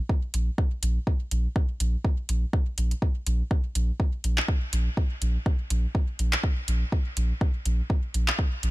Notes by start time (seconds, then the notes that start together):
0.09 kick
0.34 A#1, closed hi-hat
0.58 kick
0.83 A#1, closed hi-hat
1.07 kick
1.31 A#1, closed hi-hat
1.56 kick
1.80 A#1, closed hi-hat
2.05 kick
2.29 A#1, closed hi-hat
2.53 kick
2.78 A#1, closed hi-hat
2.91 closed hi-hat
3.02 kick
3.27 A#1, closed hi-hat
3.51 kick
3.75 A#1, closed hi-hat
4.00 kick
4.24 A#1, closed hi-hat
4.38 clap
4.48 kick
4.73 A#1, closed hi-hat
4.97 kick
5.22 A#1, closed hi-hat
5.46 kick
5.70 A#1, closed hi-hat
5.95 kick
6.19 A#1, closed hi-hat
6.33 clap
6.44 kick
6.68 A#1, closed hi-hat
6.92 kick
7.17 A#1, closed hi-hat
7.41 kick
7.66 A#1, closed hi-hat
7.90 kick
8.14 A#1, closed hi-hat
8.28 clap
8.39 kick
8.63 A#1, closed hi-hat